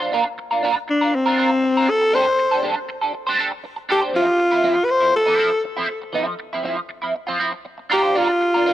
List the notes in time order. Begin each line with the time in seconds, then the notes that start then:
0.00 D4 F4 C5
0.12 D4 F4 A#4
0.25 muted clean electric guitar stroke
0.38 muted clean electric guitar stroke
0.51 D4 F4 A#4
0.63 D4 F4 A#4
0.76 muted clean electric guitar stroke
0.88 D4, muted clean electric guitar stroke
1.01 D4 F4 A#4
1.13 C4, muted clean electric guitar stroke
1.26 D4 F4 A#4
1.38 D4 F4 A#4
1.52 muted clean electric guitar stroke
1.63 muted clean electric guitar stroke
1.77 D4 F4 A#4
1.89 A4, muted clean electric guitar stroke
2.02 muted clean electric guitar stroke
2.13 D4 G4 A4 C5
2.26 muted clean electric guitar stroke
2.39 muted clean electric guitar stroke
2.51 D4 G4 A4
2.63 D4 G4 A4
2.76 muted clean electric guitar stroke
2.89 muted clean electric guitar stroke
3.01 D4 G4 A4
3.14 muted clean electric guitar stroke
3.27 D4 G4 C5
3.39 D4 G4 A4
3.52 muted clean electric guitar stroke
3.64 muted clean electric guitar stroke
3.76 muted clean electric guitar stroke
3.89 D4 G4 A4
4.01 D4 G4 C5
4.13 F3 C4 E4 F4
4.27 muted clean electric guitar stroke
4.38 muted clean electric guitar stroke
4.51 F3 C4 E4
4.63 F3 C4 E4
4.76 muted clean electric guitar stroke
4.85 B4, muted clean electric guitar stroke
4.91 C5
5.01 F3 C4 E4
5.13 A4, muted clean electric guitar stroke
5.26 F3 C4 E4
5.38 F3 C4 E4
5.51 muted clean electric guitar stroke
5.64 muted clean electric guitar stroke
5.77 F3 C4 E4
5.89 muted clean electric guitar stroke
6.02 muted clean electric guitar stroke
6.13 F3 C4 E4
6.27 muted clean electric guitar stroke
6.39 muted clean electric guitar stroke
6.53 F3 C4 E4
6.63 F3 C4 E4
6.78 muted clean electric guitar stroke
6.89 muted clean electric guitar stroke
7.02 F3 C4 E4
7.15 muted clean electric guitar stroke
7.27 F3 C4 F4
7.39 F3 C4 E4
7.52 muted clean electric guitar stroke
7.65 muted clean electric guitar stroke
7.78 muted clean electric guitar stroke
7.90 D4 F4 G4 A#4
8.03 D4 F4 C5
8.15 D4 F4 A#4
8.29 muted clean electric guitar stroke
8.41 muted clean electric guitar stroke
8.54 D4 F4 A#4
8.66 D4 F4 A#4